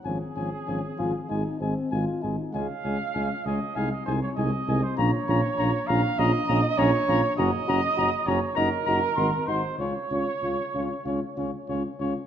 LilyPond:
<<
  \new Staff \with { instrumentName = "Cornet" } { \time 4/4 \key des \major \tempo 4 = 98 aes''8 aes''8 aes''8 aes''8 aes''8 aes''8 aes''8 aes''8 | aes''8 aes''8 aes''8 aes''8 aes''8 aes''8 aes''8 aes''8 | bes''8 bes''8 bes''8 bes''8 bes''8 bes''8 bes''8 bes''8 | bes''8 bes''8 bes''8 bes''8 bes''8 bes''8 c'''8 c'''8 |
des''8 des''8 des''8 des''8 des''8 des''8 des''8 des''8 | }
  \new Staff \with { instrumentName = "Flugelhorn" } { \time 4/4 \key des \major aes'2. r4 | f''4. ees''8 f''16 ees''16 c''16 des''16 ees''8. c''16 | des''4. f''8 ees''4 des''4 | ees''4. des''8 bes'4. c''8 |
des''2. r4 | }
  \new Staff \with { instrumentName = "French horn" } { \time 4/4 \key des \major des'8 des'8 des'8 f'8 ees'8 c'8 f'8 ees'8 | des'8 des'8 des'8 des'8 ees'8 ees'8 ees'8 ees'8 | f'8 f'8 f'8 f'8 f'8 f'8 f'8 f'8 | ges'8 ges'8 ges'8 ges'8 ges'8 ges'8 ges'8 ges'8 |
f'8 f'8 f'8 f'8 f'8 f'8 f'8 f'8 | }
  \new Staff \with { instrumentName = "Euphonium" } { \time 4/4 \key des \major f8 f8 f8 f8 aes8 aes8 aes8 aes8 | aes8 aes8 aes8 aes8 aes8 aes8 aes8 aes8 | des'8 des'8 des'8 des'8 des'8 des'8 des'8 des'8 | des'8 des'8 des'8 des'8 ees'8 ees'8 ees'8 ees'8 |
des'8 des'8 des'8 des'8 des'8 des'8 des'8 des'8 | }
  \new Staff \with { instrumentName = "Tuba" } { \clef bass \time 4/4 \key des \major aes,,8 aes,,8 aes,,8 aes,,8 aes,,8 aes,,8 aes,,8 aes,,8 | des,8 des,8 des,8 des,8 c,8 c,8 c,8 c,8 | bes,,8 bes,,8 bes,,8 bes,,8 bes,,8 bes,,8 bes,,8 bes,,8 | ges,,8 ges,,8 ges,,8 ges,,8 ges,,8 ges,,8 aes,,8 aes,,8 |
des,8 des,8 des,8 des,8 des,8 des,8 des,8 des,8 | }
>>